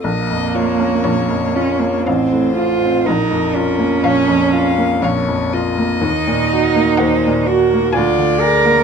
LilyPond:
<<
  \new Staff \with { instrumentName = "Violin" } { \time 3/4 \key bes \minor \tempo 4 = 61 r4 des''4 f''4 | r4 f''4 f''4 | r4 ges''4 aes''4 | }
  \new Staff \with { instrumentName = "Violin" } { \time 3/4 \key bes \minor ees''8 des''4. c''4 | bes'4 des''8 f''8 des''8 ees''8~ | ees''4 c''8 bes'8 d''4 | }
  \new Staff \with { instrumentName = "Cello" } { \time 3/4 \key bes \minor bes4. des'16 bes16 c'8 f'8 | ees'8 des'2 r8 | ees'4. ges'8 f'8 bes'8 | }
  \new Staff \with { instrumentName = "Grand piano" } { \clef bass \time 3/4 \key bes \minor bes,,16 f,16 f'16 des'16 bes,,16 f,16 f'16 des'16 a,,16 a,16 f'16 c'16 | bes,,16 f,16 f'16 bes16 bes,,16 f,16 f'16 bes16 bes,,16 f,16 f'16 bes16 | ees,16 bes,16 ges'16 bes16 ees,16 bes,16 ges'16 bes16 d,16 d16 aes'16 bes16 | }
>>